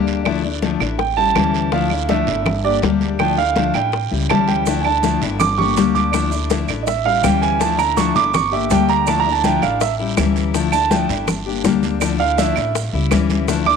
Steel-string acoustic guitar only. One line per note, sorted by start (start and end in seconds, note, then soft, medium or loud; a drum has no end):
0.00 0.24 D3 medium
0.00 0.25 G3 medium
0.00 0.25 A#3 medium
0.00 0.25 D4 medium
0.00 0.26 G4 medium
0.25 0.43 D3 medium
0.25 0.43 F3 medium
0.25 0.43 A3 medium
0.25 0.44 D4 medium
0.25 0.42 E4 medium
0.44 0.62 A3 soft
0.44 0.62 D4 soft
0.44 0.61 E4 soft
0.62 0.80 D3 medium
0.62 0.80 F3 medium
0.62 0.80 A3 medium
0.62 0.80 D4 medium
0.62 0.79 E4 medium
0.81 0.99 A3 soft
0.81 0.99 D4 soft
0.81 0.98 E4 soft
0.99 muted steel-string acoustic guitar stroke medium
1.17 1.35 G3 soft
1.17 1.36 C#4 soft
1.17 1.35 E4 medium
1.35 1.72 E3 medium
1.35 1.72 G3 medium
1.35 1.72 C#4 medium
1.35 1.72 E4 medium
1.72 1.90 D3 medium
1.72 1.90 F3 medium
1.72 1.90 A3 medium
1.72 1.91 D4 medium
1.72 1.90 E4 medium
1.91 2.09 A3 soft
1.91 2.09 D4 soft
1.91 2.09 E4 soft
2.09 2.27 D3 medium
2.09 2.27 F3 medium
2.09 2.27 A3 medium
2.09 2.27 D4 medium
2.09 2.26 E4 medium
2.27 2.46 A3 soft
2.27 2.45 D4 soft
2.27 2.45 E4 soft
2.46 muted steel-string acoustic guitar stroke medium
2.64 2.83 A#3 soft
2.64 2.83 D4 soft
2.64 2.82 G4 soft
2.83 3.19 D3 medium
2.83 3.19 G3 medium
2.83 3.20 A#3 medium
2.83 3.20 D4 medium
2.83 3.20 G4 medium
3.20 3.37 D3 medium
3.20 3.38 F3 medium
3.20 3.38 A3 medium
3.20 3.38 D4 medium
3.20 3.37 E4 medium
3.38 3.56 A3 soft
3.38 3.56 D4 soft
3.38 3.56 E4 soft
3.56 3.74 D3 medium
3.56 3.74 F3 medium
3.56 3.75 A3 medium
3.56 3.74 D4 medium
3.56 3.74 E4 medium
3.75 3.93 A3 soft
3.75 3.93 D4 soft
3.75 3.92 E4 medium
3.93 muted steel-string acoustic guitar stroke medium
4.11 4.29 G3 soft
4.11 4.29 C#4 soft
4.11 4.29 E4 soft
4.29 4.66 E3 medium
4.29 4.66 G3 medium
4.29 4.66 C#4 medium
4.29 4.66 E4 medium
4.66 4.84 D3 medium
4.66 4.84 F3 medium
4.66 4.85 A3 medium
4.66 4.85 D4 medium
4.66 4.84 E4 medium
4.85 5.03 A3 soft
4.85 5.03 D4 soft
4.85 5.03 E4 medium
5.03 5.21 D3 medium
5.03 5.21 F3 medium
5.03 5.21 A3 medium
5.03 5.21 D4 medium
5.03 5.21 E4 medium
5.22 5.40 A3 soft
5.22 5.40 D4 soft
5.22 5.40 E4 medium
5.40 muted steel-string acoustic guitar stroke medium
5.58 5.77 A#3 soft
5.58 5.77 D4 soft
5.58 5.76 G4 soft
5.77 6.11 D3 medium
5.77 6.13 G3 medium
5.77 6.13 A#3 medium
5.77 6.13 D4 medium
5.77 6.14 G4 medium
6.12 6.31 D3 medium
6.12 6.31 F3 medium
6.12 6.31 A3 medium
6.12 6.31 D4 medium
6.12 6.30 E4 medium
6.31 6.49 A3 soft
6.31 6.50 D4 soft
6.31 6.49 E4 medium
6.50 6.68 D3 medium
6.50 6.68 F3 medium
6.50 6.68 A3 medium
6.50 6.68 D4 medium
6.50 6.67 E4 medium
6.68 6.87 A3 soft
6.68 6.87 D4 soft
6.68 6.86 E4 soft
6.87 muted steel-string acoustic guitar stroke medium
7.05 7.22 G3 soft
7.05 7.23 C#4 soft
7.05 7.23 E4 medium
7.22 7.59 E3 medium
7.22 7.60 G3 medium
7.22 7.60 C#4 medium
7.22 7.60 E4 medium
7.59 7.78 D3 medium
7.59 7.78 F3 medium
7.59 7.78 A3 medium
7.59 7.77 D4 medium
7.59 7.76 E4 medium
7.78 7.96 A3 soft
7.78 7.96 D4 soft
7.78 7.96 E4 medium
7.96 8.15 D3 medium
7.96 8.15 F3 medium
7.96 8.15 A3 medium
7.96 8.15 D4 medium
7.96 8.14 E4 medium
8.15 8.33 A3 soft
8.15 8.33 D4 medium
8.15 8.33 E4 medium
8.33 muted steel-string acoustic guitar stroke medium
8.52 8.70 A#3 soft
8.52 8.70 D4 soft
8.52 8.70 G4 soft
8.70 9.06 D3 medium
8.70 9.07 G3 medium
8.70 9.07 A#3 medium
8.70 9.07 D4 medium
8.70 9.07 G4 medium
9.07 9.25 D3 medium
9.07 9.25 F3 medium
9.07 9.25 A3 medium
9.07 9.26 D4 medium
9.07 9.25 E4 medium
9.26 9.43 A3 soft
9.26 9.44 D4 soft
9.26 9.44 E4 medium
9.44 9.62 D3 medium
9.44 9.62 F3 medium
9.44 9.62 A3 medium
9.44 9.63 D4 medium
9.44 9.61 E4 medium
9.62 9.81 A3 soft
9.62 9.81 D4 soft
9.62 9.80 E4 soft
9.81 muted steel-string acoustic guitar stroke medium
9.99 10.17 G3 soft
9.99 10.17 C#4 soft
9.99 10.17 E4 soft
10.17 10.53 E3 medium
10.17 10.54 G3 medium
10.17 10.54 C#4 medium
10.17 10.54 E4 medium
10.54 10.72 D3 medium
10.54 10.72 F3 medium
10.54 10.72 A3 medium
10.54 10.72 D4 medium
10.54 10.71 E4 medium
10.72 10.91 A3 soft
10.72 10.91 D4 soft
10.72 10.90 E4 soft
10.91 11.09 D3 medium
10.91 11.09 F3 medium
10.91 11.09 A3 medium
10.91 11.09 D4 medium
10.91 11.09 E4 medium
11.10 11.28 A3 soft
11.10 11.27 D4 soft
11.10 11.27 E4 medium
11.28 muted steel-string acoustic guitar stroke medium
11.46 11.64 A#3 soft
11.46 11.64 D4 soft
11.46 11.64 G4 soft
11.64 12.00 D3 medium
11.64 12.01 G3 medium
11.64 12.01 A#3 medium
11.64 12.01 D4 medium
11.64 12.01 G4 medium
12.01 12.19 D3 medium
12.01 12.19 F3 medium
12.01 12.19 A3 medium
12.01 12.19 D4 medium
12.01 12.18 E4 medium
12.20 12.38 A3 soft
12.20 12.38 D4 soft
12.20 12.37 E4 soft
12.38 12.55 D3 medium
12.38 12.56 F3 medium
12.38 12.56 A3 medium
12.38 12.56 D4 medium
12.38 12.55 E4 medium
12.57 12.74 A3 soft
12.57 12.75 D4 soft
12.57 12.74 E4 soft
12.75 muted steel-string acoustic guitar stroke medium
12.93 13.10 G3 soft
12.93 13.11 C#4 soft
12.93 13.11 E4 soft
13.11 13.47 E3 medium
13.11 13.47 G3 medium
13.11 13.48 C#4 medium
13.11 13.48 E4 medium
13.48 13.66 D3 medium
13.48 13.66 F3 medium
13.48 13.66 A3 medium
13.48 13.66 D4 medium
13.48 13.64 E4 medium
13.66 13.77 A3 soft
13.66 13.77 D4 soft
13.66 13.77 E4 medium